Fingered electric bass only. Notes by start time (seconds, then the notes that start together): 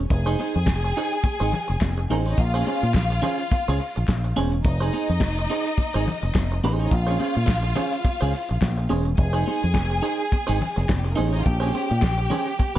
0.11 F1
0.56 F2
0.67 F1
1.41 G#1
1.70 F1
1.81 F1
2.10 A1
2.38 A#1
2.83 A#2
2.95 A#1
3.68 C#2
3.97 A#1
4.09 A#1
4.38 E1
4.65 F1
5.10 F2
5.22 F1
5.95 G#1
6.23 F1
6.35 F1
6.64 A1
6.92 A#1
7.37 A#2
7.48 A#1
8.22 C#2
8.51 A#1
8.62 A#1
8.91 E1
9.18 F1
9.64 F2
9.75 F1
10.49 G#1
10.77 F1
10.89 F1
11.19 A1
11.46 A#1
11.91 A#2
12.03 A#1